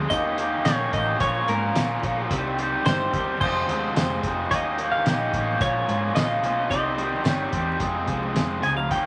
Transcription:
Already playing: G#4
0.10 D#2 D#3 A#3 C#4 G4 D#5, kick, closed hi-hat
0.38 D#3 A#3 C#4 G4, closed hi-hat
0.65 A#1 D#3 A#3 C#4 G4 C#5, snare, closed hi-hat, tambourine
0.93 A1 D#3 A#3 C#4 G4 D#5, kick, closed hi-hat
1.20 A#1 A#2 F3 A#3 C#4 F4 C#5, kick, closed hi-hat
1.48 G#2 A#2 F3 A#3 C#4 F4 A#4, closed hi-hat
1.75 A#1 A#2 F3 A#3 C#4 F4, snare, closed hi-hat, tambourine
2.03 A#1 A#2 F3 A#3 C#4 F4, kick, closed hi-hat
2.30 C2 C3 D#3 G3 C4 G4, kick, closed hi-hat
2.58 C3 D#3 G3 C4 G4, closed hi-hat
2.85 G1 C3 D#3 G3 C4 G4 C5, snare, closed hi-hat, tambourine
3.12 D#2 C3 D#3 G3 C4 G4, kick, closed hi-hat
3.40 F1 F2 C3 F3 G#3 C4 G#4 C5, kick, crash
3.68 D#2 F2 C3 F3 G#3 C4 G#4, closed hi-hat
3.95 F1 F2 C3 F3 G#3 C4 G#4, snare, closed hi-hat, tambourine
4.22 F1 F2 C3 F3 G#3 C4 G#4, kick, closed hi-hat
4.49 D#2 D#3 A#3 C#4 G4 D#5, kick, closed hi-hat
4.78 D#3 A#3 C#4 G4, closed hi-hat
4.92 F5
5.06 A#1 D#3 A#3 C#4 G4 D#5, snare, closed hi-hat, tambourine
5.33 A1 D#3 A#3 C#4 G4, kick, closed hi-hat
5.60 A#1 A#2 F3 A#3 C#4 F4 C#5, kick, closed hi-hat
5.87 G#2 A#2 F3 A#3 C#4 F4, closed hi-hat
6.15 A#1 A#2 F3 A#3 C#4 F4 D#5, snare, closed hi-hat, tambourine
6.43 B1 A#2 F3 A#3 C#4 F4, closed hi-hat
6.71 C2 C3 D#3 G3 C4 G4 D#5, kick, closed hi-hat
6.98 C3 D#3 G3 C4 G4, closed hi-hat
7.25 G1 C3 D#3 G3 C4 G4 C#5, snare, closed hi-hat, tambourine
7.53 E2 C3 D#3 G3 C4 G4, kick, closed hi-hat
7.80 F1 F2 C3 F3 G#3 C4 G#4, kick, closed hi-hat
8.07 C2 F3 G#3 C4 G#4, kick, closed hi-hat
8.34 F1 F2 C3 F3 G#3 C4 G#4, snare, closed hi-hat, tambourine
8.61 C#2 F3 G#3 C4 G#4 G#5, closed hi-hat
8.76 F5, muted overdriven electric guitar stroke
8.89 D#2 D#3 A#3 C#4 G4 G5, kick, closed hi-hat
9.03 G4

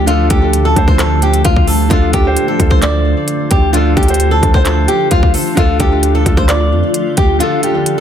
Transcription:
Already playing: D2 D3 F3 A3 D4 F4 A4
0.06 D3 D4 F4 G4 A4, closed hi-hat
0.30 D2 G4, kick, closed hi-hat
0.40 D3 D4 F4 A4
0.53 closed hi-hat
0.65 A4
0.74 D2 D3 D4 F4 C5, kick, closed hi-hat
0.86 D3 D4 F4 A4 C5, kick
0.99 A4, clap, closed hi-hat
1.22 G4, closed hi-hat
1.34 closed hi-hat
1.45 D2 F4, kick, closed hi-hat
1.56 kick
1.67 A4, open hi-hat
1.89 D2 D3 D4 F4 A4, kick, closed hi-hat
2.13 D2 G4, kick, closed hi-hat
2.23 D3 D4 F4 C5
2.37 closed hi-hat
2.48 A4
2.57 D2 D3 D4 F4 A4, kick, closed hi-hat
2.70 C5, kick
2.82 D5, clap, closed hi-hat
3.28 closed hi-hat
3.51 D2 G4, kick, closed hi-hat
3.73 D3 D4 F4 A4, closed hi-hat
3.97 D2 G4, kick, closed hi-hat
4.03 D3, closed hi-hat
4.08 D4 F4 C5, closed hi-hat
4.14 closed hi-hat
4.20 closed hi-hat
4.31 A4
4.41 D2 D3 D4 F4 A4, kick, closed hi-hat
4.52 D3 D4 F4 C5, kick
4.65 A4, clap, closed hi-hat
4.88 G4, closed hi-hat
5.11 D2 F4, kick, closed hi-hat
5.23 kick
5.34 A4, open hi-hat
5.55 D2 D3 A3 D4 F4 A4, kick, closed hi-hat
5.80 D2 G4, kick, closed hi-hat
5.90 D3 D4 F4 A4
6.03 closed hi-hat
6.15 A4
6.24 D2 D3 D4 F4 A4, kick, closed hi-hat
6.37 D2 C5, kick
6.49 D5, clap, closed hi-hat
6.72 F2
6.94 closed hi-hat
7.17 D2 G4, kick, closed hi-hat
7.39 D3 D4 F4 A4, closed hi-hat
7.63 G4, closed hi-hat
7.73 D3 D4 F4 A4
7.86 closed hi-hat

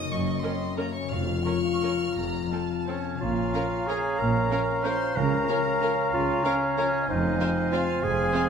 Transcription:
Already playing: F#2 A#3 C#4 D#4 A#4 C#5 D#5 A#5 D#6
0.04 C#3
0.11 F#1 F#2 C#4 C#6
0.20 C#3
0.28 C#4
0.36 E4
0.44 C4 C#4 A#4 C6
0.53 C#5
0.61 E5
0.69 A#5
0.78 A#3 C#4 A#4 C#5 E5 A#5
0.87 A#4
0.95 C#4 E4 C#6
1.04 C#3
1.11 F1 F2 F4 F5 F6
1.20 F3
1.29 C#4
1.37 F4
1.45 C#4 A#4 C#6
1.55 C#5
1.65 F5
1.74 A#5
1.83 C#4 A#4 F5
1.92 A#4
2.00 F4
2.09 F3
2.17 F1 F2 A#5
2.25 C3
2.34 C4
2.43 F4
2.52 C4 A4 A5
2.61 C5
2.70 F5
2.79 A5
2.87 C4 C#4 A4 C#5 F5
2.97 A4
3.05 F4
3.14 C3
3.21 A#1 A#2 C#4 F4 F5 A#5
3.38 C#4
3.54 F3 C#4 F4 A#4 F5 A#5
3.72 C#5
3.87 F3 C#4 G#4 A#4 F5 G#5 A#5
4.19 A#1 A#2 A#4 A#5
4.51 F3 C#4 F4 A#4 F5 A#5
4.69 C#5
4.84 F3 C#4 A#4 C5 F5 A#5 C6
5.02 F4
5.16 C#2 C#3 C#4 A#4 F5 A#5
5.33 C#4
5.48 F3 C#4 F4 A#4 F5 A#5
5.66 C#5
5.82 F3 C#4 A#4 F5 A#5
5.99 F4
6.13 C#2 C#3 F4 F5
6.44 F3 C#4 F4 A#4 C#5 F5 A#5
6.62 C#5
6.77 F3 C#4 A#4 C#5 F5 A#5
6.94 F4
7.08 F1 F2 C4 D#4 D#5 F5 G#5
7.25 C4
7.41 G#3 C4 F4 C5 F5 G#5
7.57 C5
7.72 G#3 C4 F4 G#4 C5 F5 G#5
7.89 F4
8.03 F1 F2 G#4 G#5
8.19 C4
8.34 G#3 C4 F4 C5 F5 G#5

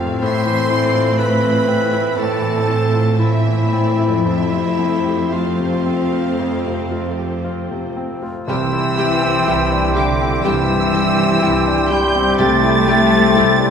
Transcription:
Already playing: F2 C3 A3 C4 F4 G4 A4 F5
0.00 F4
0.05 A2
0.09 C4
0.14 E4
0.19 A2 A3 C4 A4 C5
0.23 A2 E5 C6
0.47 E3
0.70 E4 D5
0.95 F4
1.19 E4 B4 C5 B5
1.44 E3
1.68 C4 E5
1.92 E4
2.17 A2 A3 C4 A4 D5 A5
2.41 E3
2.67 E4 C5
2.93 F4
3.19 A3 C4 E4 E5
3.46 E3
3.72 C4 D5
3.99 E4
4.08 F2
4.13 A3
4.17 F3
4.22 F2 A4
4.26 F2 A3 C4 E4 C5 E5
4.52 C3
4.79 F3
5.05 G4
5.32 A3 C4 F4 F5
5.59 C3
5.86 C4
6.12 F4
6.39 F2
6.65 C3
6.91 F4
7.18 G4
7.44 F4
7.71 C3
7.97 C4
8.23 F4
8.48 C2 C3 E3 G3 G4 C5 G5 E6
8.73 E4
8.98 G3 E4 G4 G5
9.22 C4
9.46 C2 G3 E4 G4 G5
9.72 D4
9.93 D3 G3 E4 G4 G5 D6
10.22 C4
10.44 C2 G2 E3 G3 G4 C5 G5 E6
10.70 E4
10.93 G3 G4 G5
11.19 C4
11.41 C2 G3 E4 G4 G5
11.67 D4
11.89 G3 E4 G4 G5 G6
12.15 C4
12.38 C2 C3 G3 A3 G4 G5 A6
12.63 E4
12.86 G3 G4 G5
13.11 C4
13.34 C2 G3 E4 G4 G5
13.59 D4

